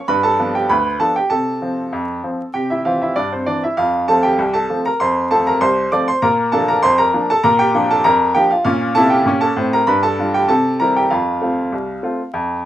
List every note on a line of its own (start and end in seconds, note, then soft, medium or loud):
0.08 0.34 G2 medium
0.08 0.23 B4 medium
0.08 0.23 B5 medium
0.23 0.52 A4 medium
0.23 0.54 A5 medium
0.39 0.56 F3 soft
0.39 0.56 B3 soft
0.39 0.56 D4 soft
0.55 0.70 G4 soft
0.55 0.70 G5 medium
0.69 0.96 D2 medium
0.69 0.99 B4 medium
0.69 1.00 B5 medium
1.00 1.17 F3 soft
1.00 1.17 B3 soft
1.00 1.17 D4 soft
1.00 1.15 A4 medium
1.00 1.15 A5 medium
1.16 1.31 G4 soft
1.16 1.31 G5 medium
1.30 1.57 C3 medium
1.30 2.50 A4 medium
1.30 2.54 A5 medium
1.62 1.79 F3 soft
1.62 1.79 C4 soft
1.93 2.19 F2 medium
2.24 2.40 F3 soft
2.24 2.41 C4 soft
2.54 2.80 C3 medium
2.54 2.69 G4 medium
2.54 2.69 G5 medium
2.70 2.85 E4 soft
2.70 2.85 E5 medium
2.85 3.02 E3 soft
2.85 3.03 C4 soft
2.85 3.00 F4 soft
2.85 3.00 F5 medium
3.02 3.16 E4 soft
3.02 3.17 E5 medium
3.16 3.42 G2 medium
3.16 3.31 D4 medium
3.16 3.31 D5 medium
3.33 3.46 C4 soft
3.33 3.47 C5 medium
3.46 3.64 E3 soft
3.46 3.64 C4 soft
3.46 3.61 D4 soft
3.46 3.62 D5 medium
3.64 3.78 E4 soft
3.64 3.78 E5 medium
3.77 4.04 F2 medium
3.77 4.06 F4 medium
3.77 4.08 F5 medium
4.08 4.25 F3 soft
4.08 4.26 A3 soft
4.08 4.26 C4 soft
4.08 4.23 A4 medium
4.08 4.23 A5 medium
4.23 4.52 G4 medium
4.23 4.54 G5 medium
4.39 4.65 C2 medium
4.54 4.83 A4 medium
4.54 4.84 A5 medium
4.70 4.86 F3 soft
4.70 4.87 A3 soft
4.70 4.87 C4 soft
4.86 5.00 A#4 medium
4.86 5.00 A#5 medium
5.00 5.26 F2 medium
5.00 5.29 C5 medium
5.00 5.30 C6 medium
5.31 5.48 F3 medium
5.31 5.48 A3 soft
5.31 5.48 C4 soft
5.31 5.45 A4 medium
5.31 5.46 A5 medium
5.47 5.61 A#4 medium
5.47 5.62 A#5 medium
5.61 5.87 C2 medium
5.61 5.90 C5 medium
5.61 5.91 C6 medium
5.92 6.09 F3 soft
5.92 6.09 A3 soft
5.92 6.09 C4 medium
5.92 6.06 D5 medium
5.92 6.07 D6 medium
6.08 6.22 C5 medium
6.08 6.23 C6 medium
6.22 6.48 A#2 medium
6.22 6.51 A#4 medium
6.22 6.53 A#5 medium
6.52 6.69 F3 soft
6.52 6.70 A#3 medium
6.52 6.70 D4 medium
6.52 6.67 A4 medium
6.52 6.67 A5 medium
6.68 6.83 A#4 medium
6.68 6.83 A#5 medium
6.83 7.09 F2 medium
6.83 6.98 C5 medium
6.83 6.98 C6 loud
6.98 7.27 A#4 medium
6.98 7.28 A#5 medium
7.14 7.30 F3 soft
7.14 7.30 A#3 soft
7.14 7.31 D4 medium
7.30 7.44 A4 medium
7.30 7.44 A5 medium
7.43 7.70 A#2 medium
7.43 7.58 A#4 medium
7.43 7.59 A#5 medium
7.59 7.88 G4 medium
7.59 7.89 G5 medium
7.75 7.91 F3 medium
7.75 7.91 A#3 medium
7.75 7.92 D4 medium
7.91 8.05 A4 medium
7.91 8.05 A5 medium
8.04 8.31 F2 medium
8.04 8.34 A#4 medium
8.04 8.35 A#5 loud
8.35 8.52 F3 medium
8.35 8.52 A#3 medium
8.35 8.53 D4 soft
8.35 8.50 G4 medium
8.35 8.50 G5 medium
8.51 8.64 F4 medium
8.51 8.63 F5 medium
8.65 8.89 A#2 medium
8.65 8.91 C#4 medium
8.65 8.94 F4 medium
8.65 8.95 F5 medium
8.95 9.20 C3 medium
8.95 9.21 E4 medium
8.95 9.10 A4 medium
8.95 9.11 A5 loud
9.10 9.39 G4 medium
9.10 9.41 G5 medium
9.26 9.50 A#2 medium
9.26 9.51 C#4 medium
9.41 9.70 A4 medium
9.41 9.72 A5 medium
9.56 9.81 A2 medium
9.56 9.82 C4 medium
9.73 9.87 A#4 medium
9.73 9.88 A#5 medium
9.87 10.13 G2 medium
9.87 10.02 B4 medium
9.87 10.02 B5 medium
10.03 10.32 A4 medium
10.03 10.33 A5 medium
10.18 10.35 G3 soft
10.18 10.36 D4 soft
10.18 10.36 F4 soft
10.34 10.49 G4 soft
10.34 10.49 G5 medium
10.48 10.75 C3 medium
10.48 10.78 A4 medium
10.48 10.79 A5 medium
10.80 10.97 G3 soft
10.80 10.97 C4 soft
10.80 10.98 E4 soft
10.80 10.95 A#4 medium
10.80 10.95 A#5 medium
10.96 11.11 G4 soft
10.96 11.11 G5 medium
11.10 11.37 F2 medium
11.10 11.41 F4 medium
11.10 12.65 F5 medium
11.42 11.58 A3 soft
11.42 11.59 C4 soft
11.42 11.59 F4 soft
11.72 11.99 C2 medium
12.03 12.20 A3 soft
12.03 12.20 C4 soft
12.03 12.21 F4 soft
12.34 12.60 F2 medium